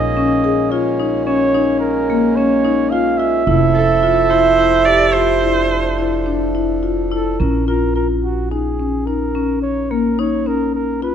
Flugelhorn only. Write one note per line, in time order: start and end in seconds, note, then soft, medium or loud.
0.00 0.73 D#5 loud
0.71 1.25 C#5 medium
1.26 1.78 C#5 loud
1.80 2.37 A#4 medium
2.36 2.92 C#5 loud
2.90 3.19 F5 medium
3.17 6.82 E5 loud
7.11 7.41 A4 medium
7.39 7.67 A#4 medium
7.68 7.94 A#4 medium
7.95 8.08 A#4 medium
8.23 8.49 F#4 medium
8.51 9.08 G#4 medium
9.06 9.62 A#4 medium
9.62 9.92 C#5 medium
9.91 10.21 A#4 medium
10.19 10.48 C#5 medium
10.47 10.74 A#4 medium
10.75 11.00 A#4 medium
11.03 11.15 B4 medium